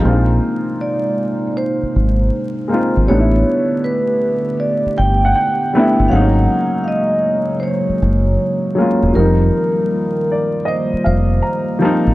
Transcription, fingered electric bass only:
X:1
M:4/4
L:1/16
Q:"Swing 16ths" 1/4=79
K:Ablyd
V:1 name="Fingered electric bass" clef=bass
B,,,2 z8 A,,,2 z3 A,,, | =A,,,2 z8 G,,,2 z3 G,,, | A,,,2 z8 _G,,,2 z3 =E,,, | F,,,2 z8 F,,,2 z3 =A,,, |]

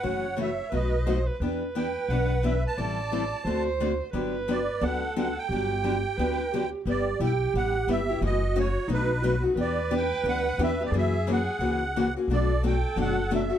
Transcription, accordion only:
X:1
M:4/4
L:1/8
Q:"Swing" 1/4=176
K:G
V:1 name="Accordion"
f2 e2 ^d3 z | z2 g2 f2 e a- | a4- a z3 | z2 d2 f2 f g- |
g6- g z | d2 g2 f2 e2 | _e2 ^c2 B3 z | d2 g2 f2 e d |
e2 f4- f z | d2 g2 f2 e2 |]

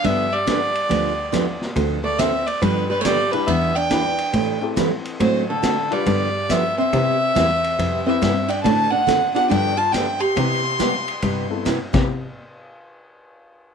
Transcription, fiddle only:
X:1
M:4/4
L:1/16
Q:"Swing" 1/4=140
K:C
V:1 name="Fiddle"
e2 d12 z2 | z2 d2 e2 d2 B2 B3/2 _d/2 =d2 B2 | e2 g8 z6 | c2 A4 d6 e2 e2- |
e8- e2 e4 g2 | a2 ^f4 f2 g2 a2 g2 c'2- | c'12 z4 | z16 |]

